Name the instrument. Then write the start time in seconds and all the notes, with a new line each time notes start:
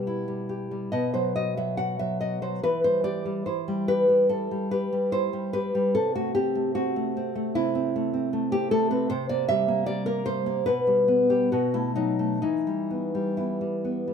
nylon-string guitar
Already playing: B2 G3 G4 B4
0.07 E4
0.28 G3
0.49 G4
0.71 G3
0.92 B2 D#5
1.14 F#3 C5
1.36 F#4 D#5
1.57 F#3 E5
1.77 F#4 F#5
1.99 F#3 E5
2.21 F#4 D#5
2.42 F#3 C5
2.63 E3 B4
2.84 G3 C5
3.04 G4 D5
3.25 G3
3.46 E4 C5
3.68 G3
3.88 G4 B4
4.09 G3
4.29 E4 A4
4.51 G3
4.71 G4 B4
4.93 G3
5.12 E4 C5
5.33 G3
5.53 G4 B4
5.75 G3
5.95 C3 A4
6.15 A3 F#4
6.35 C4 G4
6.55 A3
6.75 C4 F#4
6.96 A3
7.17 C4
7.35 A3
7.55 C3 E4
7.75 C4
7.96 A3
8.14 C4
8.33 A3
8.52 C4 G4
8.71 A3 A4
8.91 C4 B4
9.10 C3 C5
9.29 A#3 D5
9.48 G3 E5
9.68 A#3
9.86 G3 D5
10.06 A#3 A#4
10.26 G3 C5
10.46 A#3
10.66 B2 B4
10.87 G3
11.08 B3
11.30 G3 G4
11.52 B2 F#4
11.74 A3 E4
11.96 F#3 D#4
12.19 A3
12.42 E3 D#4
12.67 G3
12.91 B3
13.15 G3
13.37 B3 E4
13.61 G3
13.85 B3
14.07 G3